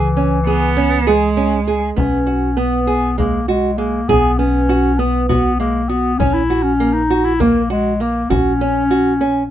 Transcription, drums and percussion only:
1.98 frame drum
2.89 frame drum
3.19 frame drum
4.10 frame drum
4.99 frame drum
5.30 frame drum
6.20 frame drum
7.11 frame drum
7.40 frame drum
8.31 frame drum

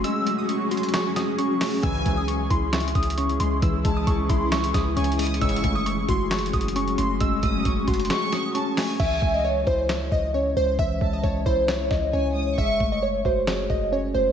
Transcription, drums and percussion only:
0.04 closed hi-hat
0.27 closed hi-hat
0.49 closed hi-hat
0.71 closed hi-hat
0.77 closed hi-hat
0.83 closed hi-hat
0.89 closed hi-hat
0.94 snare, clap, closed hi-hat
1.16 snare, closed hi-hat
1.39 closed hi-hat
1.61 snare, clap, open hi-hat
1.83 kick, closed hi-hat
2.06 kick, closed hi-hat
2.28 closed hi-hat
2.50 kick, closed hi-hat
2.73 snare, clap, closed hi-hat
2.80 closed hi-hat
2.88 closed hi-hat
2.95 kick, closed hi-hat
3.03 closed hi-hat
3.10 closed hi-hat
3.18 closed hi-hat
3.29 closed hi-hat
3.40 closed hi-hat
3.62 kick, closed hi-hat
3.85 kick, closed hi-hat
4.07 kick, closed hi-hat
4.30 kick, closed hi-hat
4.52 snare, clap, closed hi-hat
4.64 closed hi-hat
4.74 kick, snare, closed hi-hat
4.97 closed hi-hat
5.04 closed hi-hat
5.12 closed hi-hat
5.19 closed hi-hat, open hi-hat
5.27 closed hi-hat
5.34 closed hi-hat
5.41 kick, closed hi-hat
5.49 closed hi-hat
5.56 closed hi-hat
5.64 kick, closed hi-hat
5.86 closed hi-hat
6.09 kick, closed hi-hat
6.31 snare, clap, closed hi-hat
6.38 closed hi-hat
6.46 closed hi-hat
6.53 kick, closed hi-hat
6.61 closed hi-hat
6.68 closed hi-hat
6.76 closed hi-hat
6.88 closed hi-hat
6.98 closed hi-hat
7.20 kick, closed hi-hat
7.43 kick, closed hi-hat
7.65 kick, closed hi-hat
7.88 kick, closed hi-hat
7.94 closed hi-hat
8.00 closed hi-hat
8.05 closed hi-hat
8.10 snare, clap, closed hi-hat
8.33 snare, closed hi-hat
8.55 closed hi-hat
8.77 snare, clap, open hi-hat
9.00 kick, crash
9.22 kick
9.67 kick
9.89 snare, clap
10.12 kick
10.79 kick
11.01 kick
11.24 kick
11.46 kick
11.68 snare, clap
11.91 kick, snare
12.58 kick
12.80 kick
13.25 kick
13.47 snare, clap
13.70 kick

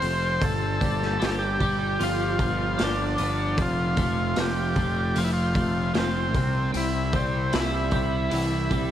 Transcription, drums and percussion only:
0.02 open hi-hat
0.42 kick, open hi-hat
0.81 kick, open hi-hat
1.03 snare
1.22 snare, open hi-hat
1.61 kick, open hi-hat
2.00 open hi-hat
2.39 kick, open hi-hat
2.79 snare, open hi-hat
3.18 open hi-hat
3.58 kick, open hi-hat
3.97 kick, open hi-hat
4.36 snare, open hi-hat
4.76 kick, open hi-hat
5.16 open hi-hat
5.55 kick, open hi-hat
5.94 snare, open hi-hat
6.34 kick, open hi-hat
6.74 open hi-hat
7.13 kick, open hi-hat
7.53 snare, open hi-hat
7.91 kick, open hi-hat
8.31 open hi-hat
8.71 kick, open hi-hat

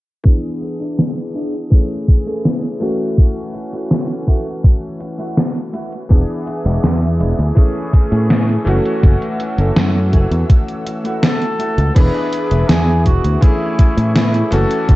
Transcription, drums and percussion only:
0.25 kick, closed hi-hat
0.62 closed hi-hat
0.81 closed hi-hat
0.99 snare, closed hi-hat
1.35 closed hi-hat
1.54 closed hi-hat
1.72 kick, closed hi-hat
2.08 kick, closed hi-hat
2.27 closed hi-hat
2.45 snare, closed hi-hat
2.64 closed hi-hat
2.81 closed hi-hat
3.00 closed hi-hat
3.18 kick, closed hi-hat
3.54 closed hi-hat
3.73 closed hi-hat
3.91 snare, closed hi-hat
4.28 kick, closed hi-hat
4.46 closed hi-hat
4.64 kick, closed hi-hat
5.01 closed hi-hat
5.19 closed hi-hat
5.37 snare, closed hi-hat
5.56 closed hi-hat
5.74 closed hi-hat
5.92 closed hi-hat
6.10 kick, closed hi-hat
6.47 closed hi-hat
6.66 closed hi-hat
6.84 snare, closed hi-hat
7.21 closed hi-hat
7.39 closed hi-hat
7.57 kick, closed hi-hat
7.93 kick, closed hi-hat
8.12 closed hi-hat
8.30 snare, closed hi-hat
8.49 closed hi-hat
8.67 closed hi-hat
8.85 closed hi-hat
9.03 kick, closed hi-hat
9.22 closed hi-hat
9.40 closed hi-hat
9.58 closed hi-hat
9.76 snare, closed hi-hat
10.13 kick, closed hi-hat
10.32 closed hi-hat
10.50 kick, closed hi-hat
10.68 closed hi-hat
10.86 closed hi-hat
11.05 closed hi-hat
11.23 snare, closed hi-hat
11.42 closed hi-hat
11.60 closed hi-hat
11.78 closed hi-hat
11.96 kick, closed hi-hat, crash
12.33 closed hi-hat
12.51 closed hi-hat
12.69 snare, closed hi-hat
13.06 kick, closed hi-hat
13.24 closed hi-hat
13.42 kick, closed hi-hat
13.79 kick, closed hi-hat
13.98 closed hi-hat
14.16 snare, closed hi-hat
14.34 closed hi-hat
14.52 closed hi-hat
14.71 closed hi-hat
14.89 kick, closed hi-hat

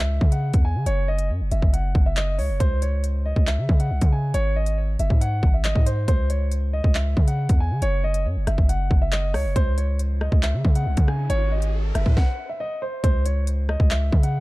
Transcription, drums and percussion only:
0.21 kick
0.32 closed hi-hat
0.53 kick, closed hi-hat
0.86 closed hi-hat
1.18 closed hi-hat
1.51 closed hi-hat
1.62 kick
1.74 closed hi-hat
1.95 kick
2.17 clap, closed hi-hat
2.39 open hi-hat
2.60 kick, closed hi-hat
2.82 closed hi-hat
3.04 closed hi-hat
3.36 kick
3.47 clap, closed hi-hat
3.69 kick
3.80 closed hi-hat
4.01 kick, closed hi-hat
4.34 closed hi-hat
4.66 closed hi-hat
4.99 closed hi-hat
5.10 kick
5.21 closed hi-hat
5.43 kick
5.64 clap, closed hi-hat
5.75 kick
5.87 closed hi-hat
6.08 kick, closed hi-hat
6.30 closed hi-hat
6.52 closed hi-hat
6.84 kick
6.95 clap, closed hi-hat
7.17 kick
7.28 closed hi-hat
7.49 kick, closed hi-hat
7.82 closed hi-hat
8.14 closed hi-hat
8.47 cross-stick, closed hi-hat
8.58 kick
8.69 closed hi-hat
8.91 kick
9.12 clap, closed hi-hat
9.34 cross-stick, open hi-hat
9.56 kick, closed hi-hat
9.78 closed hi-hat
9.99 closed hi-hat
10.21 cross-stick
10.32 kick
10.43 clap, closed hi-hat
10.65 kick
10.75 closed hi-hat
10.97 kick, closed hi-hat
11.08 cross-stick
11.30 closed hi-hat
11.62 closed hi-hat
11.95 cross-stick, closed hi-hat
12.06 kick
12.17 kick, snare
13.04 kick, closed hi-hat
13.26 closed hi-hat
13.47 closed hi-hat
13.69 cross-stick
13.80 kick
13.91 clap, closed hi-hat
14.12 kick
14.23 closed hi-hat

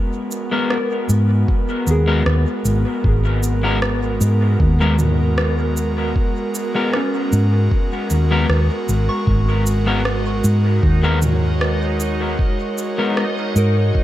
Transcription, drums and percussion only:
0.31 shaker
0.70 cross-stick
1.09 shaker
1.48 kick
1.87 shaker
2.26 cross-stick
2.65 shaker
3.04 kick
3.43 shaker
3.82 cross-stick
4.21 shaker
4.60 kick
4.99 mid tom, shaker
5.38 cross-stick
5.77 shaker
6.16 kick
6.55 shaker
6.93 cross-stick
7.33 shaker
7.71 kick
8.10 shaker
8.50 cross-stick
8.89 shaker
9.27 kick
9.67 shaker
10.05 cross-stick
10.44 shaker
10.83 kick
11.22 mid tom, shaker
11.61 cross-stick
12.00 shaker
12.39 kick
12.78 shaker
13.17 cross-stick
13.56 shaker
13.95 kick

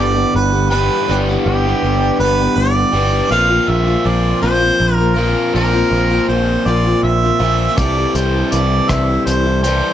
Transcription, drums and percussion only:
7.78 kick, closed hi-hat
8.15 closed hi-hat
8.52 closed hi-hat
8.89 kick, cross-stick, closed hi-hat
9.27 closed hi-hat
9.64 closed hi-hat

